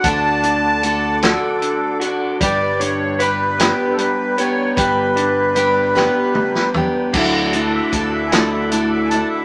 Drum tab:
CC |------------|------------|------------|x-----------|
HH |x-x-x-x-x-x-|x-x-x-x-x-x-|x-x-x-------|--x-x-x-x-x-|
SD |------o-----|------o-----|------o--o--|------o-----|
T2 |------------|------------|--------o---|------------|
FT |------------|------------|----------o-|------------|
BD |o-----------|o-----------|o-----------|o---o-------|